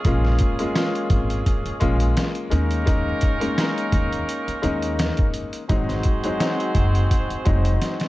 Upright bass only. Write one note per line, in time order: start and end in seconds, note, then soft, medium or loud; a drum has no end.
0.05 0.34 A#1 loud
1.10 1.40 G#1 loud
1.65 muted upright bass stroke medium
1.82 2.11 A#1 medium
2.52 3.11 D#2 loud
3.93 4.22 D#2 loud
4.48 muted upright bass stroke soft
4.64 5.09 D#2 loud
5.70 5.99 G#1 loud
6.75 7.05 F#1 medium
7.30 muted upright bass stroke soft
7.47 7.76 F1 loud